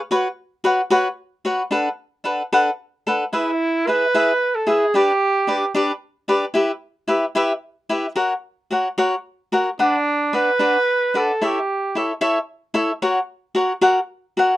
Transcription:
0.11 F#4 B4 C#5 F#5
0.64 F#4 B4 C#5 F#5
0.90 F#4 B4 C#5 F#5
1.45 F#4 B4 C#5 F#5
1.71 D4 A4 B4 F#5
2.24 D4 A4 B4 F#5
2.53 D4 A4 B4 F#5
3.07 D4 A4 B4 F#5
3.33 E4 G#4 B4 E5
3.87 E4 G#4 B4 E5
4.14 E4 G#4 B4 E5
4.55 A4
4.67 E4 G#4 B4 E5
4.94 D4 G4 B4 D5
5.47 D4 G4 B4 D5
5.75 D4 G4 B4 D5
6.28 D4 G4 B4 D5
6.54 E4 G4 B4 E5
7.08 E4 G4 B4 E5
7.35 E4 G4 B4 E5
7.89 E4 G4 B4 E5
8.16 F#4 A#4 C#5 F#5
8.71 F#4 A#4 C#5 F#5
8.98 F#4 A#4 C#5 F#5
9.52 F#4 A#4 C#5 F#5
9.79 D4 B4 D5 F#5
10.33 D4 B4 D5 F#5
10.59 D4 B4 D5 F#5
11.14 D4 A4 B4 D5 F#5
11.41 E4 G4 A4 C#5 E5
11.95 E4 A4 C#5 E5
12.21 E4 A4 C#5 E5
12.74 E4 A4 C#5 E5
13.02 F#4 A#4 C#5 F#5
13.55 F#4 A#4 C#5 F#5
13.81 F#4 A#4 C#5 F#5
14.37 F#4 A#4 C#5 F#5

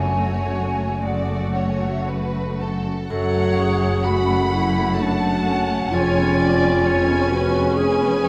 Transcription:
Already playing: F#1 F#2 A3 F#4 C#5 G#5
0.19 A3
0.47 C#4
0.74 A3
1.02 G#3 A3 F#4 D5 F#5
1.28 A3
1.55 C#4 C#5
1.69 G#5
1.80 A3 F#5
1.90 E5
2.00 F#5
2.08 F#4 B4
2.34 A3
2.60 C#4 A4
2.86 A3
3.09 F#1 F#2 F#3 C#4 F#4 A4 C#5 F#5
3.35 A3
3.58 C#4 G#4
3.81 A3
4.05 G#3 A3 F#4 F#5 B5
4.29 A3
4.52 C#4 E4
4.76 A3
4.99 D4 F#4 F#5 A5
5.23 A3
5.47 C#4
5.70 A3
5.92 F1 F2 C#4 F4 G#4 C#5 G#5
6.17 B3
6.40 C#4 D5
6.63 B3
6.85 A3 C#5 G#5
7.08 B3
7.31 C#4 F#4 B4
7.54 B3
7.77 G#4 B4 G#5
8.01 B3
8.24 C#4 C#5

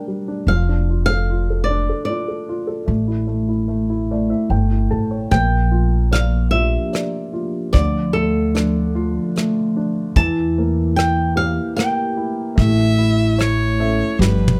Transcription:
Already playing: G3 D4 A#4
0.08 G3
0.28 D4
0.47 F1 F3 F5
0.69 D4
0.90 F4
1.06 F5
1.10 A4
1.30 F4
1.50 A4
1.64 D5
1.70 D4
1.89 A4
2.05 D5
2.09 F4
2.28 A4
2.49 F4
2.67 A4
2.86 A1 A3
3.08 E4
3.27 A3
3.48 E4
3.68 A3
3.89 E4
4.11 A3 D5
4.30 E4 E5
4.50 G1 A3 G5
4.71 E4
4.91 A1 A4 A5
5.11 C#5
5.31 A#1 F3 A#3 G5, kick, closed hi-hat
5.71 F4
6.11 A#3 D5 F5, cross-stick, closed hi-hat
6.51 A#3 F4 E5
6.55 D4 G4
6.93 D5, cross-stick, closed hi-hat
7.33 F4
7.73 D2 D3 F3 D5, kick, closed hi-hat
8.13 A3 A4
8.55 F3 D4, cross-stick, closed hi-hat
8.95 F3 A3 F4
9.36 A3, cross-stick, closed hi-hat
9.76 D4
10.16 E2 E3 E4 A5, kick, closed hi-hat
10.58 A#3
10.96 A#3 G5, cross-stick, closed hi-hat
11.36 A#3 G4 F5
11.76 A#3 G5, cross-stick, closed hi-hat
12.17 E4
12.56 A1 A3 E4 E5, kick, closed hi-hat
12.98 E4
13.38 A3 C#5, cross-stick, closed hi-hat
13.79 A3 C#4 A4 E5
14.19 G1 F3 G3 B4, snare
14.48 mid tom

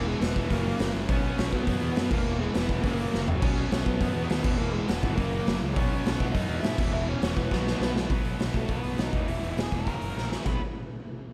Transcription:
Already playing: E1 E2 B2 E3
0.08 G#3 G#4
0.21 E1 B3 B4, snare, open hi-hat
0.36 E1 E2 B2 E3, kick
0.50 F#1 F#2 C#3 F#3 A#3 A#4, kick, open hi-hat
0.79 F#1, snare, open hi-hat
0.94 F#1
1.08 B1 B2 F#3 B3 C#4 C#5, kick, open hi-hat
1.38 B1, snare, open hi-hat
1.53 B1 B3 B4, kick
1.66 F#2 B2 F#3 B3, kick, open hi-hat
1.82 E2
1.96 F#2, snare, open hi-hat
2.10 E1 E2 B2 E3 A#3 A#4, kick, crash
2.27 E1
2.40 G#3 G#4
2.54 E1 B3 B4, snare, open hi-hat
2.68 F1 E2 B2 E3, kick
2.83 F#1 F#2 C#3 F#3 A#3 A#4, kick, open hi-hat
3.14 F#1, snare
3.28 F#1, floor tom
3.40 B1 B2 F#3 C#4 C#5, kick, crash
3.45 B3
3.71 B1, snare, open hi-hat
3.84 B1 B3 B4, kick
4.01 F#2 B2 F#3 B3, kick, open hi-hat
4.15 E2
4.30 D#2, snare, open hi-hat
4.44 E1 E2 B2 E3, kick, crash
4.58 E1 A#3 A#4
4.73 G#3 G#4
4.87 E1 B3 B4, snare, open hi-hat
5.02 G#1 E2 B2 E3, kick
5.15 F#1 F#2 C#3 A#3 A#4, kick, open hi-hat
5.21 F#3
5.47 F#1, snare, open hi-hat
5.62 C#2
5.74 B1 B2 F#3 C#4 C#5, kick, open hi-hat
5.79 B3
6.05 B1, snare, open hi-hat
6.19 B1 B3 B4, kick
6.32 F#2 B2 F#3 D#4 D#5, kick, open hi-hat
6.37 B3
6.49 E2
6.61 G#2 E4 E5, snare, open hi-hat
6.77 E1 E2 B2 E3, kick, crash
6.92 E1 E4 E5
7.08 C#4 C#5
7.22 E1 C#4 C#5, snare, open hi-hat
7.35 E1 E2 B2 E3 B3 B4, kick
7.50 B1 B2 F#3 B3, kick, snare
7.67 snare
7.80 B1, snare
7.94 B1, snare
8.09 B1 B2 F#3 B3, kick, open hi-hat
8.25 B1, open hi-hat
8.39 B1, snare, open hi-hat
8.54 B1 A3 A4, kick, open hi-hat
8.68 B1 B3 B4, kick, open hi-hat
8.83 B1, open hi-hat
8.98 B1 D#4 D#5, snare, open hi-hat
9.12 E1 E2 B2 E3, kick, open hi-hat
9.28 E1 E4 E5, open hi-hat
9.43 E1, open hi-hat
9.50 E4 E5
9.57 E1 G#4 G#5, snare, open hi-hat
9.72 E1 A#4 A#5, kick, open hi-hat
9.87 F#1 F#2 C#3 F#3, kick, open hi-hat
10.01 F#1, open hi-hat
10.17 A#1, snare
10.32 snare
10.45 B1 B2 F#3 B3 B5, kick, crash

